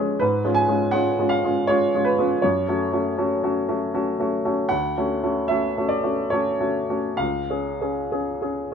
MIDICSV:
0, 0, Header, 1, 2, 480
1, 0, Start_track
1, 0, Key_signature, 3, "minor"
1, 0, Tempo, 738007
1, 137, Time_signature, 3, 2, 24, 8
1, 1576, Tempo, 767263
1, 3496, Tempo, 820793
1, 3976, Tempo, 877193
1, 4456, Tempo, 910470
1, 5273, End_track
2, 0, Start_track
2, 0, Title_t, "Grand piano"
2, 0, Program_c, 0, 0
2, 0, Control_c, 0, 64, 127
2, 0, Note_on_c, 0, 56, 44
2, 0, Note_on_c, 0, 61, 45
2, 0, Note_on_c, 0, 68, 50
2, 123, Note_off_c, 0, 56, 0
2, 125, Note_off_c, 0, 61, 0
2, 127, Note_off_c, 0, 68, 0
2, 127, Note_on_c, 0, 71, 78
2, 140, Note_on_c, 0, 44, 59
2, 149, Control_c, 0, 64, 0
2, 266, Control_c, 0, 64, 127
2, 289, Note_on_c, 0, 56, 46
2, 292, Note_off_c, 0, 44, 0
2, 292, Note_on_c, 0, 61, 45
2, 296, Note_on_c, 0, 65, 50
2, 354, Note_on_c, 0, 80, 84
2, 368, Note_off_c, 0, 71, 0
2, 432, Note_off_c, 0, 56, 0
2, 433, Note_off_c, 0, 61, 0
2, 436, Note_off_c, 0, 65, 0
2, 443, Note_on_c, 0, 56, 45
2, 443, Note_on_c, 0, 61, 42
2, 449, Note_on_c, 0, 65, 47
2, 588, Note_off_c, 0, 61, 0
2, 589, Note_off_c, 0, 56, 0
2, 592, Note_off_c, 0, 65, 0
2, 594, Note_on_c, 0, 78, 83
2, 599, Note_off_c, 0, 80, 0
2, 603, Note_on_c, 0, 56, 46
2, 607, Note_on_c, 0, 61, 43
2, 610, Note_on_c, 0, 65, 50
2, 750, Note_off_c, 0, 56, 0
2, 753, Note_off_c, 0, 61, 0
2, 754, Note_off_c, 0, 65, 0
2, 775, Note_on_c, 0, 56, 46
2, 777, Note_on_c, 0, 61, 44
2, 781, Note_on_c, 0, 65, 50
2, 840, Note_on_c, 0, 77, 79
2, 845, Note_off_c, 0, 78, 0
2, 920, Note_off_c, 0, 56, 0
2, 921, Note_off_c, 0, 61, 0
2, 924, Note_off_c, 0, 65, 0
2, 939, Note_on_c, 0, 56, 42
2, 941, Note_on_c, 0, 61, 45
2, 941, Note_on_c, 0, 65, 48
2, 1084, Note_off_c, 0, 56, 0
2, 1085, Note_off_c, 0, 61, 0
2, 1085, Note_off_c, 0, 65, 0
2, 1089, Note_on_c, 0, 73, 85
2, 1091, Note_off_c, 0, 77, 0
2, 1100, Note_on_c, 0, 56, 47
2, 1101, Note_on_c, 0, 61, 48
2, 1105, Note_on_c, 0, 65, 52
2, 1243, Note_off_c, 0, 56, 0
2, 1244, Note_off_c, 0, 61, 0
2, 1246, Note_off_c, 0, 65, 0
2, 1264, Note_on_c, 0, 56, 44
2, 1269, Note_on_c, 0, 61, 45
2, 1272, Note_on_c, 0, 65, 47
2, 1330, Note_on_c, 0, 71, 76
2, 1333, Note_off_c, 0, 73, 0
2, 1404, Note_off_c, 0, 56, 0
2, 1407, Note_off_c, 0, 61, 0
2, 1408, Note_off_c, 0, 65, 0
2, 1424, Note_on_c, 0, 56, 46
2, 1424, Note_on_c, 0, 61, 47
2, 1426, Note_on_c, 0, 65, 49
2, 1564, Note_off_c, 0, 56, 0
2, 1564, Note_off_c, 0, 61, 0
2, 1565, Note_off_c, 0, 65, 0
2, 1572, Note_off_c, 0, 71, 0
2, 1574, Note_on_c, 0, 73, 78
2, 1582, Note_on_c, 0, 42, 58
2, 1588, Control_c, 0, 64, 0
2, 1707, Control_c, 0, 64, 127
2, 1730, Note_off_c, 0, 42, 0
2, 1737, Note_on_c, 0, 57, 44
2, 1740, Note_on_c, 0, 61, 47
2, 1744, Note_on_c, 0, 66, 50
2, 1877, Note_off_c, 0, 57, 0
2, 1879, Note_off_c, 0, 61, 0
2, 1881, Note_off_c, 0, 66, 0
2, 1891, Note_on_c, 0, 57, 44
2, 1894, Note_on_c, 0, 61, 47
2, 1897, Note_on_c, 0, 66, 50
2, 2034, Note_off_c, 0, 57, 0
2, 2035, Note_off_c, 0, 61, 0
2, 2037, Note_off_c, 0, 66, 0
2, 2048, Note_on_c, 0, 57, 46
2, 2052, Note_on_c, 0, 61, 45
2, 2055, Note_on_c, 0, 66, 53
2, 2191, Note_off_c, 0, 57, 0
2, 2193, Note_off_c, 0, 61, 0
2, 2194, Note_off_c, 0, 66, 0
2, 2205, Note_on_c, 0, 57, 45
2, 2210, Note_on_c, 0, 61, 46
2, 2212, Note_on_c, 0, 66, 50
2, 2348, Note_off_c, 0, 57, 0
2, 2350, Note_off_c, 0, 61, 0
2, 2351, Note_off_c, 0, 66, 0
2, 2365, Note_on_c, 0, 57, 46
2, 2368, Note_on_c, 0, 61, 44
2, 2369, Note_on_c, 0, 66, 48
2, 2507, Note_off_c, 0, 57, 0
2, 2509, Note_off_c, 0, 61, 0
2, 2509, Note_off_c, 0, 66, 0
2, 2524, Note_on_c, 0, 57, 46
2, 2527, Note_on_c, 0, 61, 47
2, 2529, Note_on_c, 0, 66, 52
2, 2667, Note_off_c, 0, 57, 0
2, 2668, Note_off_c, 0, 61, 0
2, 2670, Note_off_c, 0, 66, 0
2, 2682, Note_on_c, 0, 57, 46
2, 2687, Note_on_c, 0, 61, 46
2, 2690, Note_on_c, 0, 66, 49
2, 2761, Note_off_c, 0, 73, 0
2, 2826, Note_off_c, 0, 57, 0
2, 2829, Note_off_c, 0, 61, 0
2, 2830, Note_off_c, 0, 66, 0
2, 2843, Note_on_c, 0, 57, 47
2, 2845, Note_on_c, 0, 61, 46
2, 2847, Note_on_c, 0, 66, 49
2, 2987, Note_off_c, 0, 57, 0
2, 2988, Note_off_c, 0, 61, 0
2, 2989, Note_off_c, 0, 66, 0
2, 2992, Note_on_c, 0, 78, 90
2, 3004, Note_on_c, 0, 38, 58
2, 3014, Control_c, 0, 64, 0
2, 3142, Control_c, 0, 64, 127
2, 3161, Note_off_c, 0, 38, 0
2, 3171, Note_on_c, 0, 57, 43
2, 3174, Note_on_c, 0, 61, 43
2, 3174, Note_on_c, 0, 66, 47
2, 3317, Note_off_c, 0, 57, 0
2, 3318, Note_off_c, 0, 61, 0
2, 3318, Note_off_c, 0, 66, 0
2, 3334, Note_on_c, 0, 57, 42
2, 3335, Note_on_c, 0, 61, 43
2, 3338, Note_on_c, 0, 66, 49
2, 3483, Note_off_c, 0, 57, 0
2, 3484, Note_off_c, 0, 61, 0
2, 3485, Note_off_c, 0, 66, 0
2, 3488, Note_on_c, 0, 76, 81
2, 3492, Note_off_c, 0, 78, 0
2, 3500, Note_on_c, 0, 57, 45
2, 3503, Note_on_c, 0, 61, 44
2, 3505, Note_on_c, 0, 66, 49
2, 3642, Note_off_c, 0, 57, 0
2, 3643, Note_off_c, 0, 61, 0
2, 3644, Note_off_c, 0, 66, 0
2, 3661, Note_on_c, 0, 57, 43
2, 3665, Note_on_c, 0, 61, 42
2, 3666, Note_on_c, 0, 66, 45
2, 3726, Note_on_c, 0, 74, 72
2, 3731, Note_off_c, 0, 76, 0
2, 3803, Note_off_c, 0, 57, 0
2, 3805, Note_off_c, 0, 61, 0
2, 3805, Note_off_c, 0, 66, 0
2, 3812, Note_on_c, 0, 57, 42
2, 3815, Note_on_c, 0, 61, 40
2, 3817, Note_on_c, 0, 66, 44
2, 3959, Note_off_c, 0, 57, 0
2, 3961, Note_off_c, 0, 61, 0
2, 3962, Note_off_c, 0, 66, 0
2, 3969, Note_on_c, 0, 73, 76
2, 3973, Note_off_c, 0, 74, 0
2, 3981, Note_on_c, 0, 57, 45
2, 3982, Note_on_c, 0, 61, 45
2, 3986, Note_on_c, 0, 66, 47
2, 4118, Note_off_c, 0, 57, 0
2, 4119, Note_off_c, 0, 61, 0
2, 4121, Note_off_c, 0, 66, 0
2, 4133, Note_on_c, 0, 57, 42
2, 4136, Note_on_c, 0, 61, 41
2, 4137, Note_on_c, 0, 66, 44
2, 4275, Note_off_c, 0, 57, 0
2, 4277, Note_off_c, 0, 61, 0
2, 4278, Note_off_c, 0, 66, 0
2, 4293, Note_on_c, 0, 57, 42
2, 4295, Note_on_c, 0, 61, 43
2, 4298, Note_on_c, 0, 66, 48
2, 4442, Note_off_c, 0, 57, 0
2, 4443, Note_off_c, 0, 61, 0
2, 4444, Note_off_c, 0, 66, 0
2, 4445, Note_on_c, 0, 77, 73
2, 4453, Note_off_c, 0, 73, 0
2, 4455, Note_on_c, 0, 37, 53
2, 4467, Control_c, 0, 64, 0
2, 4565, Control_c, 0, 64, 127
2, 4615, Note_off_c, 0, 37, 0
2, 4620, Note_on_c, 0, 61, 38
2, 4622, Note_on_c, 0, 68, 42
2, 4768, Note_off_c, 0, 61, 0
2, 4770, Note_off_c, 0, 68, 0
2, 4784, Note_on_c, 0, 61, 41
2, 4786, Note_on_c, 0, 68, 46
2, 4929, Note_off_c, 0, 61, 0
2, 4930, Note_off_c, 0, 68, 0
2, 4946, Note_on_c, 0, 61, 41
2, 4946, Note_on_c, 0, 68, 45
2, 5087, Note_off_c, 0, 61, 0
2, 5087, Note_off_c, 0, 68, 0
2, 5103, Note_on_c, 0, 61, 40
2, 5105, Note_on_c, 0, 68, 44
2, 5243, Note_off_c, 0, 61, 0
2, 5244, Note_off_c, 0, 68, 0
2, 5273, Note_off_c, 0, 77, 0
2, 5273, End_track
0, 0, End_of_file